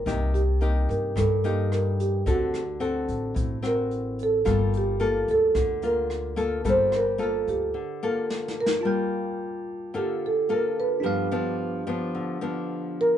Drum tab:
HH |x--x--x--x--x--x--x--x--|x--x--x--x--x--x--x--x--|x--x--x--x--x--x--x--x--|x--x--x--x--------------|
SD |r-----------r-----r-----|---r-----------r--------|r-----------r-----r-----|---r--------------o-o-o-|
BD |o-----------o-----------|o-----------o-----------|o-----------o-----------|o-----------------------|

HH |------------------------|------------------------|
SD |------------------------|------------------------|
BD |------------------------|------------------------|